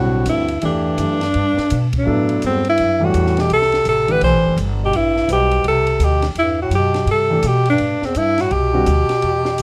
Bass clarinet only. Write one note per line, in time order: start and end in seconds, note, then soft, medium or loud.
0.00 0.24 A2 medium
0.27 0.60 G2 medium
0.61 1.88 G2 medium
1.94 2.39 G2 medium
2.45 2.65 E2 medium
2.68 3.04 G2 medium
3.03 3.41 A2 medium
3.40 3.52 B2 medium
3.52 3.84 C3 medium
3.88 4.14 C3 medium
4.12 4.23 D3 medium
4.24 4.56 E3 medium
4.83 4.97 B2 medium
4.95 5.30 G2 medium
5.32 5.64 B2 medium
5.68 6.05 C3 medium
6.04 6.25 B2 medium
6.40 6.60 G2 medium
6.62 6.73 A2 medium
6.77 7.08 B2 medium
7.12 7.48 C3 medium
7.47 7.68 B2 medium
7.71 8.07 G2 medium
8.06 8.18 E2 medium
8.17 8.41 G2 medium
8.40 8.54 A2 medium
8.53 9.62 B2 medium